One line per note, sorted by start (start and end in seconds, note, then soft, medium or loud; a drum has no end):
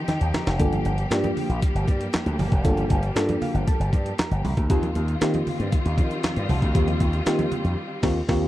0.00 4.66 F3 medium
0.00 0.56 C4 medium
0.00 0.56 D#4 medium
0.00 4.66 G4 medium
0.08 0.18 D#3 medium
0.08 0.32 G5 medium
0.08 snare medium
0.08 closed hi-hat medium
0.08 muted conga soft
0.08 high conga medium
0.21 0.31 D#2 medium
0.21 closed hi-hat medium
0.34 0.58 A#5 medium
0.34 snare loud
0.34 closed hi-hat medium
0.34 muted conga soft
0.34 high conga medium
0.34 low conga medium
0.47 0.60 F1 medium
0.47 snare loud
0.47 closed hi-hat soft
0.59 0.79 G1 loud
0.59 4.66 G3 medium
0.59 0.91 A#3 medium
0.59 4.66 A#3 medium
0.59 0.91 D4 medium
0.59 0.91 F4 medium
0.59 0.91 A4 loud
0.59 kick loud
0.59 closed hi-hat medium
0.59 low conga medium
0.73 closed hi-hat soft
0.73 high conga medium
0.85 1.04 G1 loud
0.85 closed hi-hat medium
0.85 muted conga soft
0.98 closed hi-hat medium
1.11 1.30 G2 loud
1.11 1.74 A#3 loud
1.11 1.74 D4 medium
1.11 1.74 F4 medium
1.11 1.74 G4 loud
1.11 snare loud
1.11 clap loud
1.11 closed hi-hat medium
1.24 closed hi-hat medium
1.24 high conga medium
1.37 open hi-hat medium
1.37 low conga medium
1.49 1.59 A#1 medium
1.49 closed hi-hat soft
1.62 kick loud
1.62 closed hi-hat medium
1.75 1.85 G1 medium
1.75 closed hi-hat medium
1.88 2.07 G2 loud
1.88 kick medium
1.88 closed hi-hat medium
1.88 muted conga soft
1.88 high conga medium
2.01 closed hi-hat medium
2.13 snare loud
2.13 clap loud
2.13 closed hi-hat medium
2.13 muted conga soft
2.13 high conga medium
2.26 2.36 D2 medium
2.26 closed hi-hat medium
2.39 2.48 G1 loud
2.39 open hi-hat medium
2.39 muted conga soft
2.39 high conga medium
2.39 low conga medium
2.52 2.65 F1 loud
2.52 kick loud
2.52 closed hi-hat soft
2.64 2.84 G1 loud
2.64 2.96 A#3 medium
2.64 2.96 D4 medium
2.64 2.96 F4 medium
2.64 2.96 A4 loud
2.64 kick loud
2.64 closed hi-hat medium
2.64 muted conga soft
2.64 low conga medium
2.77 closed hi-hat medium
2.77 high conga medium
2.90 3.09 G1 loud
2.90 kick medium
2.90 closed hi-hat medium
2.90 muted conga soft
3.03 closed hi-hat medium
3.16 3.35 G2 loud
3.16 3.79 A#3 medium
3.16 3.79 D4 medium
3.16 3.79 F4 medium
3.16 3.79 A4 loud
3.16 snare loud
3.16 clap loud
3.16 closed hi-hat medium
3.16 muted conga soft
3.29 closed hi-hat medium
3.29 high conga medium
3.42 3.66 F5 medium
3.42 open hi-hat medium
3.42 muted conga soft
3.42 low conga medium
3.54 3.64 G1 medium
3.54 closed hi-hat medium
3.67 4.15 A5 medium
3.67 kick loud
3.67 closed hi-hat medium
3.80 3.89 G1 medium
3.80 closed hi-hat medium
3.93 4.12 G2 loud
3.93 kick medium
3.93 closed hi-hat medium
3.93 high conga medium
4.06 closed hi-hat medium
4.18 4.67 A#5 medium
4.18 snare loud
4.18 clap loud
4.18 closed hi-hat medium
4.18 muted conga soft
4.18 high conga medium
4.31 4.41 G1 medium
4.31 closed hi-hat medium
4.44 4.54 C2 medium
4.44 open hi-hat medium
4.44 high conga medium
4.44 low conga medium
4.57 4.67 D2 medium
4.57 kick loud
4.57 closed hi-hat soft
4.70 4.89 D#2 loud
4.70 8.48 D#3 medium
4.70 8.48 G3 medium
4.70 5.01 A#3 medium
4.70 8.48 C4 medium
4.70 5.01 C4 medium
4.70 8.48 F4 loud
4.70 5.02 F4 medium
4.70 5.02 G4 loud
4.70 kick loud
4.70 closed hi-hat loud
4.70 low conga medium
4.83 closed hi-hat soft
4.83 high conga medium
4.95 5.15 D#2 medium
4.95 closed hi-hat medium
4.95 muted conga soft
5.08 closed hi-hat medium
5.21 5.40 D#3 loud
5.21 5.84 A#3 medium
5.21 5.84 C4 medium
5.21 5.84 F4 medium
5.21 5.85 G4 loud
5.21 snare loud
5.21 clap loud
5.21 closed hi-hat medium
5.21 muted conga soft
5.34 closed hi-hat medium
5.34 high conga loud
5.47 open hi-hat medium
5.47 muted conga soft
5.47 low conga medium
5.60 5.69 G2 medium
5.60 closed hi-hat medium
5.72 kick loud
5.72 closed hi-hat medium
5.72 muted conga soft
5.86 5.99 D#2 loud
5.86 closed hi-hat medium
5.98 6.17 D#3 loud
5.98 kick medium
5.98 closed hi-hat medium
5.98 muted conga soft
5.98 high conga medium
6.11 closed hi-hat medium
6.23 snare loud
6.23 clap medium
6.23 closed hi-hat medium
6.23 muted conga soft
6.23 high conga medium
6.36 6.46 G2 loud
6.36 closed hi-hat medium
6.49 6.59 C2 medium
6.49 open hi-hat medium
6.49 muted conga soft
6.49 high conga medium
6.49 low conga medium
6.62 6.72 D2 loud
6.62 kick loud
6.62 closed hi-hat soft
6.75 6.94 D#2 loud
6.75 7.06 A#3 medium
6.75 7.07 C4 medium
6.75 7.07 F4 medium
6.75 7.07 G4 medium
6.75 kick loud
6.75 closed hi-hat loud
6.75 muted conga soft
6.75 low conga medium
6.88 closed hi-hat soft
6.88 high conga medium
7.00 7.20 D#2 loud
7.00 kick medium
7.00 closed hi-hat medium
7.00 muted conga soft
7.13 closed hi-hat medium
7.26 7.45 D#3 loud
7.26 7.78 A#3 medium
7.26 7.78 C4 medium
7.26 7.78 F4 medium
7.26 7.78 G4 loud
7.26 snare loud
7.26 clap loud
7.26 closed hi-hat medium
7.39 closed hi-hat medium
7.39 high conga loud
7.52 closed hi-hat medium
7.52 low conga medium
7.64 7.74 F2 medium
7.64 closed hi-hat soft
8.03 8.21 D#2 loud
8.03 8.20 A#3 loud
8.03 8.21 C4 loud
8.03 8.21 F4 loud
8.03 8.21 G4 loud
8.03 kick loud
8.03 snare loud
8.03 crash medium
8.28 8.46 D#2 loud
8.28 8.46 A#3 loud
8.28 8.46 C4 loud
8.28 8.46 F4 loud
8.28 8.47 G4 loud
8.28 kick loud
8.28 snare loud
8.28 crash medium